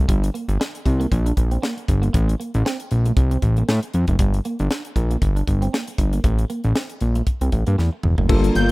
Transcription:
0.08 G1 G3, kick, closed hi-hat
0.23 muted clean electric guitar stroke, closed hi-hat
0.34 A#3, closed hi-hat
0.48 G1, closed hi-hat
0.60 D4, snare
0.75 closed hi-hat
0.85 C2, muted clean electric guitar stroke, kick, closed hi-hat
1.00 A#3, closed hi-hat
1.12 A#1, kick, closed hi-hat
1.26 D4, closed hi-hat
1.37 A#1, muted clean electric guitar stroke, kick, closed hi-hat
1.51 C4, closed hi-hat
1.62 A#3, snare
1.77 muted clean electric guitar stroke, closed hi-hat
1.88 G1, kick, closed hi-hat
2.02 A#3, closed hi-hat
2.13 A1 A3, kick, closed hi-hat
2.28 muted clean electric guitar stroke, closed hi-hat
2.40 A#3, closed hi-hat
2.54 A1, closed hi-hat
2.65 C4, snare
2.80 closed hi-hat
2.91 A#1, muted clean electric guitar stroke, closed hi-hat
3.06 A3, closed hi-hat
3.17 C2, kick, closed hi-hat
3.31 C4, closed hi-hat
3.42 A1, muted clean electric guitar stroke, kick, closed hi-hat
3.57 A#3, closed hi-hat
3.69 A2 A3, snare
3.83 muted clean electric guitar stroke, closed hi-hat
3.94 F2, closed hi-hat
4.07 F#1 A3, kick, closed hi-hat
4.19 G1 G3, kick, closed hi-hat
4.34 muted clean electric guitar stroke, closed hi-hat
4.45 A#3, closed hi-hat
4.59 G1, closed hi-hat
4.71 D4, snare
4.85 closed hi-hat
4.96 A#1, muted clean electric guitar stroke, kick, closed hi-hat
5.11 A#3, closed hi-hat
5.22 G1, kick, closed hi-hat
5.36 D4, closed hi-hat
5.47 G1, muted clean electric guitar stroke, kick, closed hi-hat
5.62 C4, closed hi-hat
5.73 A#3, snare
5.88 muted clean electric guitar stroke, closed hi-hat
5.98 G1, kick, closed hi-hat
6.13 A#3, closed hi-hat
6.24 A1 A3, kick, closed hi-hat
6.39 muted clean electric guitar stroke, closed hi-hat
6.50 A#3, closed hi-hat
6.64 A1, closed hi-hat
6.75 C4, snare
6.90 closed hi-hat
7.01 A#1, muted clean electric guitar stroke, closed hi-hat
7.15 A3, closed hi-hat
7.27 kick, closed hi-hat
7.41 C2 C4, closed hi-hat
7.52 A1, muted clean electric guitar stroke, kick, closed hi-hat
7.67 G2 A#3, closed hi-hat
7.78 E2 A3, snare
7.93 muted clean electric guitar stroke
8.03 E1, mid tom
8.18 F#1 A3, floor tom
8.28 G1 G3 A#3 D4 F4 A4, kick, crash
8.44 closed hi-hat
8.55 G1 G6, closed hi-hat

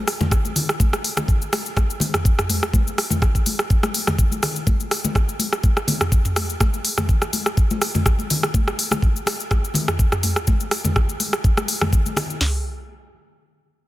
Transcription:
0.08 cross-stick, open hi-hat, shaker
0.21 mid tom, high conga, low conga, shaker
0.31 kick, cross-stick, shaker
0.45 high conga, shaker
0.56 open hi-hat, low conga, shaker
0.69 cross-stick, shaker
0.80 kick, high conga, shaker
0.93 cross-stick, shaker
1.04 open hi-hat, shaker
1.17 cross-stick, high conga, low conga, shaker
1.28 kick, shaker
1.42 shaker
1.53 cross-stick, open hi-hat, high conga, shaker
1.66 shaker
1.76 kick, cross-stick, high conga, shaker
1.90 shaker
2.00 open hi-hat, high conga, low conga, shaker
2.14 cross-stick, mid tom, shaker
2.25 kick, shaker
2.39 cross-stick, mid tom, shaker
2.50 mid tom, open hi-hat, high conga, shaker
2.63 cross-stick, shaker
2.73 kick, high conga, shaker
2.87 shaker
2.98 cross-stick, open hi-hat, shaker
3.10 mid tom, high conga, low conga, shaker
3.22 kick, cross-stick, shaker
3.35 kick, shaker
3.46 open hi-hat, high conga, shaker
3.59 cross-stick, shaker
3.70 kick, shaker
3.83 cross-stick, high conga, shaker
3.94 open hi-hat, shaker
4.07 cross-stick, mid tom, high conga, low conga, shaker
4.19 kick, shaker
4.32 high conga, shaker
4.43 cross-stick, open hi-hat, low conga, shaker
4.56 shaker
4.67 kick, high conga, shaker
4.80 shaker
4.91 cross-stick, open hi-hat, shaker
5.04 high conga, low conga, shaker
5.15 kick, cross-stick, shaker
5.29 shaker
5.39 open hi-hat, high conga, shaker
5.53 cross-stick, shaker
5.64 kick, high conga, shaker
5.77 cross-stick, shaker
5.88 open hi-hat, high conga, low conga, shaker
6.01 cross-stick, mid tom, shaker
6.12 kick, shaker
6.25 mid tom, shaker
6.36 cross-stick, mid tom, open hi-hat, high conga, shaker
6.50 shaker
6.60 kick, cross-stick, high conga, shaker
6.74 shaker
6.85 open hi-hat, shaker
6.98 cross-stick, mid tom, high conga, low conga, shaker
7.09 kick, shaker
7.22 cross-stick, shaker
7.33 open hi-hat, high conga, shaker
7.46 cross-stick, shaker
7.57 kick, shaker
7.71 high conga, shaker
7.82 cross-stick, open hi-hat, shaker
7.95 mid tom, high conga, low conga, shaker
8.06 kick, cross-stick, shaker
8.19 high conga, shaker
8.30 open hi-hat, low conga, shaker
8.43 cross-stick, shaker
8.54 kick, high conga, shaker
8.68 cross-stick, shaker
8.79 open hi-hat, shaker
8.91 cross-stick, high conga, low conga, shaker
9.02 kick, shaker
9.16 shaker
9.26 cross-stick, open hi-hat, high conga, shaker
9.40 shaker
9.51 kick, cross-stick, high conga, shaker
9.64 shaker
9.74 open hi-hat, high conga, low conga, shaker
9.88 cross-stick, mid tom, shaker
9.99 kick, shaker
10.12 cross-stick, mid tom, shaker
10.23 mid tom, open hi-hat, high conga, shaker
10.36 cross-stick, shaker
10.47 kick, high conga, shaker
10.60 shaker
10.71 cross-stick, open hi-hat, shaker
10.84 mid tom, high conga, low conga, shaker
10.96 kick, cross-stick, shaker
11.09 shaker
11.20 open hi-hat, high conga, shaker
11.33 cross-stick, shaker
11.44 kick, shaker
11.57 cross-stick, high conga, shaker
11.68 open hi-hat, shaker
11.81 cross-stick, mid tom, high conga, low conga, shaker
11.93 kick, shaker
12.06 high conga, shaker
12.17 cross-stick, open hi-hat, low conga, shaker
12.30 shaker
12.41 snare, floor tom, open hi-hat

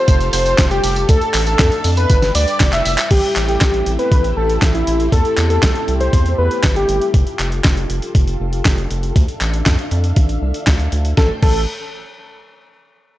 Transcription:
Already playing: F4 G4 A4 C5
0.08 F1, kick, closed hi-hat, tambourine
0.20 closed hi-hat, tambourine
0.33 F1 C5, open hi-hat, tambourine
0.46 closed hi-hat, tambourine
0.58 F1, kick, snare, clap, closed hi-hat, tambourine
0.71 G4, closed hi-hat, tambourine
0.84 F1, open hi-hat, tambourine
0.96 closed hi-hat, tambourine
1.09 D2 D4 A4 E5 F5, kick, closed hi-hat, tambourine
1.21 closed hi-hat, tambourine
1.34 A1, clap, open hi-hat, tambourine
1.47 A4, closed hi-hat, tambourine
1.59 F2, kick, snare, clap, closed hi-hat, tambourine
1.72 closed hi-hat, tambourine
1.84 F2, open hi-hat, tambourine
1.97 B4, closed hi-hat, tambourine
2.10 G1 G3 G4 B4 D5, kick, closed hi-hat, tambourine
2.22 snare, closed hi-hat, tambourine
2.35 D2 D5, open hi-hat, tambourine
2.48 closed hi-hat, tambourine
2.60 F1, kick, snare, clap, closed hi-hat, tambourine
2.73 E5, clap, closed hi-hat, tambourine
2.85 F1, open hi-hat, tambourine
2.98 clap, closed hi-hat, tambourine
3.11 A1 A3 C4 E4 G4, kick, closed hi-hat, crash
3.23 closed hi-hat
3.36 A1, clap, closed hi-hat
3.48 G4, closed hi-hat
3.61 A1, kick, snare, clap, closed hi-hat
3.74 closed hi-hat
3.86 A1, closed hi-hat
3.99 B4, closed hi-hat
4.12 A1, kick, closed hi-hat
4.24 closed hi-hat
4.37 A1 A4
4.50 closed hi-hat
4.62 A1, kick, snare, clap, closed hi-hat
4.74 E4, closed hi-hat
4.87 A1, closed hi-hat
5.00 closed hi-hat
5.12 E2 A4, kick, closed hi-hat
5.25 closed hi-hat
5.38 E2, clap, closed hi-hat
5.50 A4, closed hi-hat
5.63 C2, kick, snare, clap, closed hi-hat
5.75 closed hi-hat
5.88 C2, closed hi-hat
6.00 C5, closed hi-hat
6.13 E2, kick, closed hi-hat
6.26 closed hi-hat
6.38 E2 B4
6.51 closed hi-hat
6.64 G1, kick, snare, clap, closed hi-hat
6.76 G4, closed hi-hat
6.89 G1, closed hi-hat
7.01 closed hi-hat
7.14 F1 F4 A4, kick, closed hi-hat
7.27 closed hi-hat
7.39 F1, clap, closed hi-hat
7.52 closed hi-hat
7.64 F1, kick, snare, clap, closed hi-hat
7.77 closed hi-hat
7.90 F1, closed hi-hat
8.02 closed hi-hat
8.15 F1, kick, closed hi-hat
8.28 closed hi-hat
8.40 F1
8.53 closed hi-hat
8.65 F1, kick, snare, clap, closed hi-hat
8.78 closed hi-hat
8.91 F1, closed hi-hat
9.03 closed hi-hat
9.15 D2 D4 E5 F5, kick, closed hi-hat
9.28 closed hi-hat
9.41 A1, clap, closed hi-hat
9.54 closed hi-hat
9.66 F2, kick, snare, clap, closed hi-hat
9.79 closed hi-hat
9.91 F2, closed hi-hat
10.04 closed hi-hat
10.16 A1, kick, closed hi-hat
10.29 closed hi-hat
10.42 C2
10.54 closed hi-hat
10.67 D2, kick, snare, clap, closed hi-hat
10.79 closed hi-hat
10.92 D2, closed hi-hat
11.05 closed hi-hat
11.17 A1 A3 A4 C5 G5, kick, snare
11.43 A1 A4, kick, crash

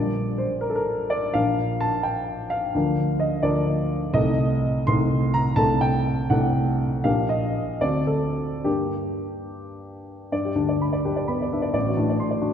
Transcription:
Already playing: A#1 G3 D4 A#4 D5
0.38 C5
0.61 A#4
0.70 A4
0.75 A#4
1.10 D5
1.34 A#1 F3 D4 A#4 F5
1.81 A5
2.03 G5
2.50 F5
2.74 D2 F3 D4 A#4
3.20 D#5
3.43 D2 F3 D4 A#4 D5
4.14 C2 A3 D#4 A4 D#5
4.87 C2 A3 D#4 A4 C6
5.34 A#5
5.56 C2 A3 D4 A4 A5
5.81 G5
6.30 C2 A3 D4 A4 F#5
7.04 A#1 A#3 D4 G4 F5
7.29 D#5
7.81 D2 C4 D4 F#4 D5
8.07 A4
8.64 G2 A#3 D4 G4
10.32 G2 D5
10.45 G4
10.55 D2 D4
10.69 D5
10.82 B5
10.93 D5
11.05 D4 G4
11.16 D5
11.28 B3 B5
11.42 D5
11.53 D4 E5
11.62 D5
11.73 A1 D5
11.87 F#4
11.96 A2 D4
12.09 D5
12.20 C6
12.31 D5
12.41 D4 F#4

